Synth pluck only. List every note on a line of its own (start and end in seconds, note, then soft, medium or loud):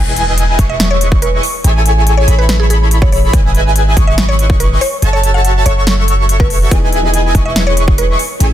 0.69 0.87 E5 medium
0.91 1.08 C#5 medium
1.22 1.40 B4 medium
2.17 2.35 C#5 medium
2.39 2.45 B4 medium
2.49 2.56 B4 medium
2.60 2.66 G#4 medium
2.70 2.77 G#4 medium
3.02 3.09 C#5 medium
3.12 3.19 C#5 medium
4.07 4.25 E5 medium
4.29 4.46 C#5 medium
4.60 4.78 B4 medium
4.81 5.11 C#5 medium
5.13 5.31 C#5 loud
5.34 5.64 F#5 medium
5.66 5.84 C#5 medium
6.40 6.71 B4 loud
7.46 7.63 E5 medium
7.67 7.84 C#5 medium
7.98 8.16 B4 medium